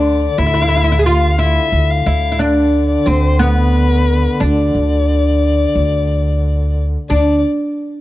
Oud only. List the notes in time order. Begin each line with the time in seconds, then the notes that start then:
Already playing: D4
0.38 E4
0.46 E4
0.54 E4
0.62 E4
0.69 E4
0.77 E4
0.84 E4
0.92 E4
0.99 G#4
1.06 F4
1.39 E4
2.06 E4
2.32 E4
2.39 D4
3.06 C4
3.39 B3
4.40 D4
7.10 D4